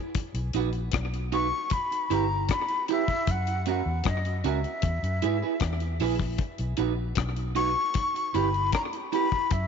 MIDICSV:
0, 0, Header, 1, 6, 480
1, 0, Start_track
1, 0, Tempo, 780234
1, 95, Time_signature, 4, 2, 24, 8
1, 5951, End_track
2, 0, Start_track
2, 0, Title_t, "Flute"
2, 0, Program_c, 0, 73
2, 822, Note_on_c, 0, 85, 113
2, 1064, Note_on_c, 0, 83, 111
2, 1073, Note_off_c, 0, 85, 0
2, 1311, Note_on_c, 0, 82, 96
2, 1321, Note_off_c, 0, 83, 0
2, 1547, Note_on_c, 0, 83, 106
2, 1556, Note_off_c, 0, 82, 0
2, 1780, Note_off_c, 0, 83, 0
2, 1795, Note_on_c, 0, 76, 104
2, 2036, Note_on_c, 0, 78, 108
2, 2046, Note_off_c, 0, 76, 0
2, 2265, Note_off_c, 0, 78, 0
2, 2275, Note_on_c, 0, 78, 94
2, 2514, Note_on_c, 0, 75, 87
2, 2523, Note_off_c, 0, 78, 0
2, 2744, Note_off_c, 0, 75, 0
2, 2750, Note_on_c, 0, 76, 84
2, 3677, Note_off_c, 0, 76, 0
2, 4651, Note_on_c, 0, 85, 115
2, 5135, Note_on_c, 0, 83, 101
2, 5145, Note_off_c, 0, 85, 0
2, 5371, Note_off_c, 0, 83, 0
2, 5375, Note_on_c, 0, 82, 102
2, 5429, Note_off_c, 0, 82, 0
2, 5614, Note_on_c, 0, 83, 103
2, 5856, Note_on_c, 0, 76, 106
2, 5865, Note_off_c, 0, 83, 0
2, 5951, Note_off_c, 0, 76, 0
2, 5951, End_track
3, 0, Start_track
3, 0, Title_t, "Clean electric guitar"
3, 0, Program_c, 1, 27
3, 336, Note_on_c, 1, 63, 81
3, 344, Note_on_c, 1, 66, 83
3, 347, Note_on_c, 1, 71, 88
3, 418, Note_off_c, 1, 63, 0
3, 422, Note_off_c, 1, 66, 0
3, 423, Note_off_c, 1, 71, 0
3, 814, Note_on_c, 1, 63, 84
3, 819, Note_on_c, 1, 66, 82
3, 823, Note_on_c, 1, 71, 89
3, 896, Note_off_c, 1, 63, 0
3, 899, Note_off_c, 1, 66, 0
3, 901, Note_off_c, 1, 71, 0
3, 1294, Note_on_c, 1, 64, 93
3, 1300, Note_on_c, 1, 67, 91
3, 1302, Note_on_c, 1, 71, 94
3, 1376, Note_off_c, 1, 64, 0
3, 1379, Note_off_c, 1, 67, 0
3, 1380, Note_off_c, 1, 71, 0
3, 1778, Note_on_c, 1, 64, 86
3, 1784, Note_on_c, 1, 67, 80
3, 1788, Note_on_c, 1, 71, 87
3, 1858, Note_off_c, 1, 64, 0
3, 1861, Note_off_c, 1, 67, 0
3, 1863, Note_off_c, 1, 71, 0
3, 2255, Note_on_c, 1, 61, 82
3, 2261, Note_on_c, 1, 66, 90
3, 2265, Note_on_c, 1, 70, 86
3, 2337, Note_off_c, 1, 61, 0
3, 2339, Note_off_c, 1, 66, 0
3, 2342, Note_off_c, 1, 70, 0
3, 2733, Note_on_c, 1, 61, 83
3, 2740, Note_on_c, 1, 66, 95
3, 2743, Note_on_c, 1, 70, 100
3, 2816, Note_off_c, 1, 61, 0
3, 2819, Note_off_c, 1, 66, 0
3, 2820, Note_off_c, 1, 70, 0
3, 3214, Note_on_c, 1, 64, 92
3, 3220, Note_on_c, 1, 68, 97
3, 3224, Note_on_c, 1, 71, 92
3, 3296, Note_off_c, 1, 64, 0
3, 3299, Note_off_c, 1, 68, 0
3, 3301, Note_off_c, 1, 71, 0
3, 3337, Note_on_c, 1, 71, 68
3, 3341, Note_on_c, 1, 68, 62
3, 3348, Note_on_c, 1, 64, 50
3, 3398, Note_off_c, 1, 71, 0
3, 3400, Note_off_c, 1, 68, 0
3, 3404, Note_off_c, 1, 64, 0
3, 3695, Note_on_c, 1, 64, 83
3, 3700, Note_on_c, 1, 68, 83
3, 3702, Note_on_c, 1, 71, 104
3, 3777, Note_off_c, 1, 64, 0
3, 3779, Note_off_c, 1, 68, 0
3, 3780, Note_off_c, 1, 71, 0
3, 4168, Note_on_c, 1, 63, 86
3, 4175, Note_on_c, 1, 66, 95
3, 4178, Note_on_c, 1, 71, 96
3, 4253, Note_off_c, 1, 63, 0
3, 4256, Note_off_c, 1, 66, 0
3, 4258, Note_off_c, 1, 71, 0
3, 4646, Note_on_c, 1, 63, 84
3, 4652, Note_on_c, 1, 66, 86
3, 4657, Note_on_c, 1, 71, 90
3, 4732, Note_off_c, 1, 63, 0
3, 4735, Note_off_c, 1, 66, 0
3, 4737, Note_off_c, 1, 71, 0
3, 5133, Note_on_c, 1, 64, 89
3, 5139, Note_on_c, 1, 67, 96
3, 5141, Note_on_c, 1, 71, 105
3, 5215, Note_off_c, 1, 64, 0
3, 5218, Note_off_c, 1, 67, 0
3, 5219, Note_off_c, 1, 71, 0
3, 5614, Note_on_c, 1, 64, 78
3, 5620, Note_on_c, 1, 67, 82
3, 5624, Note_on_c, 1, 71, 87
3, 5696, Note_off_c, 1, 64, 0
3, 5699, Note_off_c, 1, 67, 0
3, 5701, Note_off_c, 1, 71, 0
3, 5951, End_track
4, 0, Start_track
4, 0, Title_t, "Fingered electric bass"
4, 0, Program_c, 2, 33
4, 211, Note_on_c, 2, 35, 112
4, 327, Note_off_c, 2, 35, 0
4, 333, Note_on_c, 2, 34, 100
4, 564, Note_off_c, 2, 34, 0
4, 576, Note_on_c, 2, 35, 95
4, 922, Note_off_c, 2, 35, 0
4, 1296, Note_on_c, 2, 31, 89
4, 1525, Note_off_c, 2, 31, 0
4, 2016, Note_on_c, 2, 42, 100
4, 2362, Note_off_c, 2, 42, 0
4, 2374, Note_on_c, 2, 40, 90
4, 2488, Note_off_c, 2, 40, 0
4, 2497, Note_on_c, 2, 42, 90
4, 2725, Note_off_c, 2, 42, 0
4, 2732, Note_on_c, 2, 37, 99
4, 2850, Note_off_c, 2, 37, 0
4, 2973, Note_on_c, 2, 40, 105
4, 3089, Note_off_c, 2, 40, 0
4, 3092, Note_on_c, 2, 42, 82
4, 3207, Note_off_c, 2, 42, 0
4, 3216, Note_on_c, 2, 44, 89
4, 3332, Note_off_c, 2, 44, 0
4, 3453, Note_on_c, 2, 40, 101
4, 3683, Note_off_c, 2, 40, 0
4, 3692, Note_on_c, 2, 34, 96
4, 3922, Note_off_c, 2, 34, 0
4, 4055, Note_on_c, 2, 35, 104
4, 4168, Note_off_c, 2, 35, 0
4, 4172, Note_on_c, 2, 34, 95
4, 4402, Note_off_c, 2, 34, 0
4, 4412, Note_on_c, 2, 35, 103
4, 4760, Note_off_c, 2, 35, 0
4, 5135, Note_on_c, 2, 31, 105
4, 5364, Note_off_c, 2, 31, 0
4, 5854, Note_on_c, 2, 42, 99
4, 5951, Note_off_c, 2, 42, 0
4, 5951, End_track
5, 0, Start_track
5, 0, Title_t, "Muted clean electric guitar strokes"
5, 939, Note_on_c, 9, 29, 48
5, 1001, Note_off_c, 9, 29, 0
5, 1904, Note_on_c, 9, 29, 43
5, 1966, Note_off_c, 9, 29, 0
5, 2857, Note_on_c, 9, 29, 47
5, 2918, Note_off_c, 9, 29, 0
5, 3819, Note_on_c, 9, 29, 43
5, 3881, Note_off_c, 9, 29, 0
5, 4773, Note_on_c, 9, 29, 40
5, 4834, Note_off_c, 9, 29, 0
5, 5740, Note_on_c, 9, 29, 53
5, 5802, Note_off_c, 9, 29, 0
5, 5951, End_track
6, 0, Start_track
6, 0, Title_t, "Drums"
6, 90, Note_on_c, 9, 42, 95
6, 93, Note_on_c, 9, 36, 115
6, 152, Note_off_c, 9, 42, 0
6, 155, Note_off_c, 9, 36, 0
6, 214, Note_on_c, 9, 42, 63
6, 275, Note_off_c, 9, 42, 0
6, 329, Note_on_c, 9, 42, 75
6, 390, Note_off_c, 9, 42, 0
6, 447, Note_on_c, 9, 42, 38
6, 509, Note_off_c, 9, 42, 0
6, 563, Note_on_c, 9, 42, 93
6, 574, Note_on_c, 9, 36, 104
6, 580, Note_on_c, 9, 37, 113
6, 625, Note_off_c, 9, 42, 0
6, 635, Note_off_c, 9, 36, 0
6, 641, Note_off_c, 9, 37, 0
6, 699, Note_on_c, 9, 42, 50
6, 761, Note_off_c, 9, 42, 0
6, 814, Note_on_c, 9, 42, 70
6, 876, Note_off_c, 9, 42, 0
6, 1046, Note_on_c, 9, 42, 86
6, 1054, Note_on_c, 9, 36, 120
6, 1107, Note_off_c, 9, 42, 0
6, 1115, Note_off_c, 9, 36, 0
6, 1182, Note_on_c, 9, 42, 54
6, 1244, Note_off_c, 9, 42, 0
6, 1297, Note_on_c, 9, 42, 72
6, 1359, Note_off_c, 9, 42, 0
6, 1530, Note_on_c, 9, 42, 94
6, 1533, Note_on_c, 9, 36, 115
6, 1543, Note_on_c, 9, 37, 127
6, 1591, Note_off_c, 9, 42, 0
6, 1595, Note_off_c, 9, 36, 0
6, 1605, Note_off_c, 9, 37, 0
6, 1651, Note_on_c, 9, 42, 45
6, 1713, Note_off_c, 9, 42, 0
6, 1773, Note_on_c, 9, 42, 73
6, 1835, Note_off_c, 9, 42, 0
6, 1895, Note_on_c, 9, 36, 94
6, 1896, Note_on_c, 9, 42, 34
6, 1957, Note_off_c, 9, 36, 0
6, 1957, Note_off_c, 9, 42, 0
6, 2013, Note_on_c, 9, 42, 91
6, 2014, Note_on_c, 9, 36, 116
6, 2074, Note_off_c, 9, 42, 0
6, 2076, Note_off_c, 9, 36, 0
6, 2135, Note_on_c, 9, 42, 60
6, 2196, Note_off_c, 9, 42, 0
6, 2250, Note_on_c, 9, 42, 71
6, 2311, Note_off_c, 9, 42, 0
6, 2484, Note_on_c, 9, 42, 88
6, 2494, Note_on_c, 9, 36, 110
6, 2500, Note_on_c, 9, 37, 104
6, 2545, Note_off_c, 9, 42, 0
6, 2556, Note_off_c, 9, 36, 0
6, 2562, Note_off_c, 9, 37, 0
6, 2615, Note_on_c, 9, 42, 46
6, 2676, Note_off_c, 9, 42, 0
6, 2734, Note_on_c, 9, 42, 71
6, 2795, Note_off_c, 9, 42, 0
6, 2855, Note_on_c, 9, 42, 34
6, 2917, Note_off_c, 9, 42, 0
6, 2966, Note_on_c, 9, 42, 85
6, 2972, Note_on_c, 9, 36, 114
6, 3027, Note_off_c, 9, 42, 0
6, 3034, Note_off_c, 9, 36, 0
6, 3099, Note_on_c, 9, 42, 58
6, 3161, Note_off_c, 9, 42, 0
6, 3212, Note_on_c, 9, 42, 68
6, 3274, Note_off_c, 9, 42, 0
6, 3444, Note_on_c, 9, 42, 84
6, 3450, Note_on_c, 9, 36, 113
6, 3458, Note_on_c, 9, 37, 124
6, 3506, Note_off_c, 9, 42, 0
6, 3512, Note_off_c, 9, 36, 0
6, 3519, Note_off_c, 9, 37, 0
6, 3570, Note_on_c, 9, 42, 49
6, 3631, Note_off_c, 9, 42, 0
6, 3690, Note_on_c, 9, 46, 77
6, 3751, Note_off_c, 9, 46, 0
6, 3811, Note_on_c, 9, 36, 90
6, 3873, Note_off_c, 9, 36, 0
6, 3927, Note_on_c, 9, 42, 102
6, 3930, Note_on_c, 9, 36, 126
6, 3989, Note_off_c, 9, 42, 0
6, 3992, Note_off_c, 9, 36, 0
6, 4050, Note_on_c, 9, 42, 63
6, 4112, Note_off_c, 9, 42, 0
6, 4164, Note_on_c, 9, 42, 77
6, 4225, Note_off_c, 9, 42, 0
6, 4401, Note_on_c, 9, 42, 90
6, 4411, Note_on_c, 9, 36, 105
6, 4417, Note_on_c, 9, 37, 108
6, 4463, Note_off_c, 9, 42, 0
6, 4473, Note_off_c, 9, 36, 0
6, 4479, Note_off_c, 9, 37, 0
6, 4530, Note_on_c, 9, 42, 45
6, 4592, Note_off_c, 9, 42, 0
6, 4649, Note_on_c, 9, 42, 72
6, 4711, Note_off_c, 9, 42, 0
6, 4885, Note_on_c, 9, 42, 86
6, 4892, Note_on_c, 9, 36, 124
6, 4946, Note_off_c, 9, 42, 0
6, 4953, Note_off_c, 9, 36, 0
6, 5020, Note_on_c, 9, 42, 59
6, 5082, Note_off_c, 9, 42, 0
6, 5135, Note_on_c, 9, 42, 71
6, 5196, Note_off_c, 9, 42, 0
6, 5255, Note_on_c, 9, 42, 35
6, 5317, Note_off_c, 9, 42, 0
6, 5367, Note_on_c, 9, 42, 87
6, 5371, Note_on_c, 9, 36, 112
6, 5381, Note_on_c, 9, 37, 124
6, 5429, Note_off_c, 9, 42, 0
6, 5433, Note_off_c, 9, 36, 0
6, 5442, Note_off_c, 9, 37, 0
6, 5494, Note_on_c, 9, 42, 49
6, 5555, Note_off_c, 9, 42, 0
6, 5615, Note_on_c, 9, 42, 73
6, 5677, Note_off_c, 9, 42, 0
6, 5733, Note_on_c, 9, 36, 88
6, 5795, Note_off_c, 9, 36, 0
6, 5848, Note_on_c, 9, 42, 89
6, 5852, Note_on_c, 9, 36, 121
6, 5909, Note_off_c, 9, 42, 0
6, 5913, Note_off_c, 9, 36, 0
6, 5951, End_track
0, 0, End_of_file